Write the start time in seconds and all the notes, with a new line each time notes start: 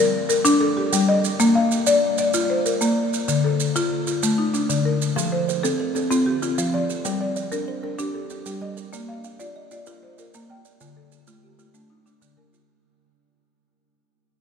Already playing: A#4 D5
0.29 A#4, maracas
0.45 D4, maracas
0.61 A4
0.77 G4
0.93 G3, maracas
1.09 D#5
1.24 maracas
1.40 A#3, maracas
1.55 F5
1.71 maracas
1.87 D5, maracas
2.18 D5, maracas
2.34 F4, maracas
2.50 C5
2.65 A#4, maracas
2.81 A#3, maracas
3.13 maracas
3.28 D3, maracas
3.44 A4
3.60 maracas
3.76 F4, maracas
4.07 F4, maracas
4.23 A3, maracas
4.38 D#4
4.54 D4, maracas
4.69 D3, maracas
4.85 A#4
5.02 maracas
5.16 F3 A4, maracas
5.32 C5
5.48 C5, maracas
5.63 C4 A4, maracas
5.80 A#4
5.95 C4 A4, maracas
6.11 C4 F4, maracas
6.26 G4
6.42 C4 F4, maracas
6.58 F3 F4, maracas
6.74 F3 D5
6.90 A4, maracas
7.05 G3 A#4, maracas
7.21 D5
7.36 D5, maracas
7.52 D4 A#4, maracas
7.68 C5
7.83 D4 A#4
7.99 D4 G4, maracas
8.14 A4
8.30 D4 G4, maracas
8.46 G3 G4, maracas
8.62 G3 D#5
8.77 A#4, maracas
8.93 A#3 D5, maracas
9.08 F5
9.24 F5, maracas
9.40 F4 D5, maracas
9.56 D#5
9.71 F4 D5, maracas
9.86 F4 A#4, maracas
10.03 C5
10.18 F4 A#4, maracas
10.34 A#3 A#4, maracas
10.50 A#3 G5
10.65 D5, maracas
10.81 D3 F4, maracas
10.97 A4
11.12 A4, maracas
11.27 A3 F4, maracas
11.43 G4
11.59 A3 F4, maracas
11.74 A3 D4, maracas
11.90 D#4
12.06 A3 D4, maracas
12.22 D3 D4, maracas
12.37 D3 A#4
12.53 F4, maracas